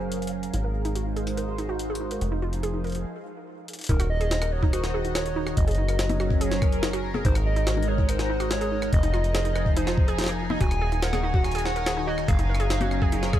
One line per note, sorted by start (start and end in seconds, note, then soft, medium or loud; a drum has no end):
0.00 0.51 F#1 medium
0.00 0.54 F#3 medium
0.00 0.54 C#4 medium
0.00 1.21 G#4 medium
0.00 2.82 A#4 medium
0.00 0.33 C5 loud
0.00 0.54 F5 medium
0.00 3.05 F5 medium
0.12 closed hi-hat medium
0.22 closed hi-hat soft
0.27 closed hi-hat medium
0.43 closed hi-hat medium
0.54 2.19 G#1 medium
0.54 2.21 G#3 medium
0.54 0.63 D#4 medium
0.54 closed hi-hat medium
0.64 0.68 A#4 medium
0.71 3.05 D#4 medium
0.71 3.05 C5 medium
0.85 0.91 D#4 loud
0.85 closed hi-hat medium
0.95 1.04 F#4 loud
0.95 closed hi-hat medium
1.16 1.25 G#4 loud
1.16 closed hi-hat soft
1.23 1.36 D#4 medium
1.23 2.21 F#4 medium
1.23 closed hi-hat medium
1.37 1.41 A#4 medium
1.37 closed hi-hat medium
1.58 1.64 D#4 loud
1.58 closed hi-hat soft
1.69 1.78 F#4 loud
1.79 closed hi-hat medium
1.90 1.99 G#4 loud
1.95 closed hi-hat medium
2.00 2.09 D#4 medium
2.11 2.14 A#4 medium
2.11 closed hi-hat medium
2.21 3.05 F1 medium
2.21 3.05 F3 medium
2.21 closed hi-hat medium
2.32 2.38 D#4 loud
2.32 3.05 G#4 medium
2.42 2.51 F4 loud
2.53 closed hi-hat soft
2.63 2.72 G#4 loud
2.63 closed hi-hat medium
2.74 2.83 D#4 medium
2.84 2.88 A#4 medium
2.84 closed hi-hat soft
2.87 closed hi-hat soft
2.90 closed hi-hat soft
2.92 closed hi-hat soft
2.95 closed hi-hat medium
3.68 closed hi-hat medium
3.73 closed hi-hat medium
3.79 closed hi-hat soft
3.81 closed hi-hat soft
3.84 closed hi-hat medium
3.87 5.55 D#1 medium
3.87 3.95 D#4 loud
3.87 4.09 A#4 loud
3.87 13.40 A#5 medium
3.87 kick loud
3.87 closed hi-hat medium
3.89 5.57 D#3 medium
3.89 closed hi-hat medium
3.99 4.09 F#4 loud
3.99 6.24 D#5 medium
3.99 cross-stick medium
3.99 closed hi-hat medium
4.10 6.24 F#4 medium
4.10 4.54 D#5 loud
4.21 4.30 G#4 loud
4.21 closed hi-hat soft
4.31 4.40 D#4 medium
4.31 snare loud
4.31 closed hi-hat medium
4.42 4.45 A#4 medium
4.42 cross-stick medium
4.42 closed hi-hat medium
4.52 4.75 C#5 loud
4.63 4.69 D#4 loud
4.63 kick medium
4.73 4.82 F#4 loud
4.73 5.14 C5 loud
4.73 cross-stick medium
4.73 closed hi-hat medium
4.84 snare medium
4.84 closed hi-hat medium
4.94 5.03 G#4 loud
5.05 5.14 D#4 medium
5.05 closed hi-hat soft
5.15 5.19 A#4 medium
5.15 5.54 C#5 loud
5.15 cross-stick medium
5.15 snare loud
5.15 closed hi-hat medium
5.26 closed hi-hat medium
5.36 5.42 D#4 loud
5.46 5.56 F#4 loud
5.46 cross-stick medium
5.57 7.23 F#1 medium
5.57 7.25 F#3 medium
5.57 6.34 D#5 loud
5.57 kick loud
5.57 closed hi-hat medium
5.67 5.77 G#4 loud
5.67 closed hi-hat medium
5.71 7.25 C#4 medium
5.71 closed hi-hat soft
5.75 5.87 D#4 medium
5.75 closed hi-hat soft
5.88 7.92 G#4 medium
5.88 5.92 A#4 medium
5.88 cross-stick medium
5.88 closed hi-hat soft
5.99 snare loud
5.99 closed hi-hat medium
6.03 9.60 A#4 medium
6.09 6.15 D#4 loud
6.09 closed hi-hat medium
6.09 low conga medium
6.20 6.29 F#4 loud
6.20 cross-stick medium
6.30 6.42 D#5 medium
6.30 kick medium
6.41 6.50 G#4 loud
6.41 6.83 C#5 medium
6.41 closed hi-hat medium
6.51 6.60 D#4 medium
6.51 snare medium
6.51 closed hi-hat medium
6.62 6.66 A#4 medium
6.62 kick loud
6.62 cross-stick medium
6.72 closed hi-hat soft
6.83 6.89 D#4 loud
6.83 snare loud
6.83 closed hi-hat medium
6.93 7.02 F#4 loud
6.93 cross-stick medium
6.93 closed hi-hat medium
7.14 7.23 G#4 loud
7.14 low conga medium
7.25 8.91 G#1 medium
7.25 8.93 G#3 medium
7.25 7.34 D#4 medium
7.25 7.34 C5 loud
7.25 kick loud
7.25 closed hi-hat medium
7.30 12.96 D#4 medium
7.35 7.39 A#4 medium
7.35 cross-stick medium
7.35 closed hi-hat medium
7.42 10.61 D#5 medium
7.46 7.90 D#5 loud
7.56 7.62 D#4 loud
7.56 closed hi-hat soft
7.61 8.93 F#5 medium
7.67 7.76 F#4 loud
7.67 cross-stick medium
7.67 snare loud
7.67 closed hi-hat medium
7.77 low conga medium
7.83 closed hi-hat medium
7.88 7.97 G#4 loud
7.88 8.10 C#5 loud
7.98 8.07 D#4 medium
7.98 kick medium
8.09 8.12 A#4 medium
8.09 8.50 C5 loud
8.09 cross-stick medium
8.09 closed hi-hat medium
8.19 snare medium
8.19 closed hi-hat medium
8.30 8.36 D#4 loud
8.40 8.49 F#4 loud
8.40 cross-stick medium
8.40 closed hi-hat soft
8.51 8.90 C#5 loud
8.51 snare loud
8.51 closed hi-hat medium
8.61 8.70 G#4 loud
8.61 closed hi-hat medium
8.72 8.81 D#4 medium
8.82 8.86 A#4 medium
8.82 cross-stick medium
8.93 10.58 F1 medium
8.93 10.60 F3 medium
8.93 9.78 D#5 loud
8.93 kick loud
8.93 closed hi-hat medium
9.03 9.09 D#4 loud
9.03 closed hi-hat medium
9.13 9.23 F4 loud
9.13 11.28 G#4 medium
9.13 cross-stick medium
9.24 closed hi-hat soft
9.35 9.44 G#4 loud
9.35 13.40 G#5 medium
9.35 snare loud
9.35 closed hi-hat medium
9.45 9.54 D#4 medium
9.45 closed hi-hat medium
9.56 9.59 A#4 medium
9.56 cross-stick medium
9.66 kick medium
9.77 9.83 D#4 loud
9.77 10.19 C5 medium
9.77 closed hi-hat medium
9.87 9.96 F4 loud
9.87 cross-stick medium
9.87 snare medium
9.87 closed hi-hat medium
9.98 kick loud
10.08 10.17 G#4 loud
10.08 closed hi-hat soft
10.19 10.28 D#4 medium
10.19 snare medium
10.19 closed hi-hat medium
10.21 snare medium
10.24 snare medium
10.26 10.33 A#4 medium
10.26 cross-stick medium
10.26 snare loud
10.26 closed hi-hat medium
10.50 10.56 D#4 loud
10.50 low conga medium
10.61 12.26 D#1 medium
10.61 12.28 D#3 medium
10.61 10.70 F#4 loud
10.61 11.04 G#5 loud
10.61 kick loud
10.61 closed hi-hat medium
10.71 cross-stick medium
10.71 closed hi-hat medium
10.81 10.90 G#4 loud
10.81 12.92 C#5 medium
10.92 11.01 D#4 medium
10.92 12.96 F#4 medium
10.92 closed hi-hat soft
11.02 11.06 A#4 medium
11.02 11.23 F#5 loud
11.02 snare loud
11.02 closed hi-hat medium
11.13 11.19 G#4 loud
11.13 cross-stick medium
11.13 closed hi-hat medium
11.13 low conga loud
11.23 11.29 D#4 loud
11.23 11.43 F#5 loud
11.34 11.43 F#4 loud
11.34 kick medium
11.44 11.67 G#5 loud
11.44 cross-stick soft
11.44 closed hi-hat soft
11.51 11.64 G#4 loud
11.51 closed hi-hat soft
11.55 closed hi-hat medium
11.58 closed hi-hat medium
11.65 11.74 D#4 medium
11.65 12.06 F#5 loud
11.65 snare medium
11.76 11.79 A#4 medium
11.76 closed hi-hat soft
11.86 11.92 G#4 loud
11.86 cross-stick medium
11.86 snare loud
11.86 closed hi-hat medium
11.97 12.03 D#4 loud
12.07 12.16 F#4 loud
12.07 12.27 D#5 medium
12.18 cross-stick medium
12.28 13.40 F#1 medium
12.28 13.40 F#3 medium
12.28 12.37 G#4 loud
12.28 13.40 F5 loud
12.28 kick loud
12.28 closed hi-hat medium
12.32 13.40 C#4 medium
12.39 12.48 D#4 medium
12.39 13.40 G#4 medium
12.39 closed hi-hat medium
12.49 12.53 A#4 medium
12.49 13.40 A#4 medium
12.55 cross-stick medium
12.60 12.66 G#4 loud
12.60 closed hi-hat soft
12.70 12.76 D#4 loud
12.70 snare loud
12.70 closed hi-hat medium
12.81 12.90 F#4 loud
12.81 closed hi-hat medium
12.81 low conga loud
12.91 cross-stick medium
13.02 13.11 G#4 loud
13.02 kick medium
13.12 13.21 D#4 medium
13.12 closed hi-hat medium
13.23 13.26 A#4 medium
13.23 snare medium
13.23 closed hi-hat medium
13.33 13.39 G#4 loud
13.33 kick loud
13.33 cross-stick medium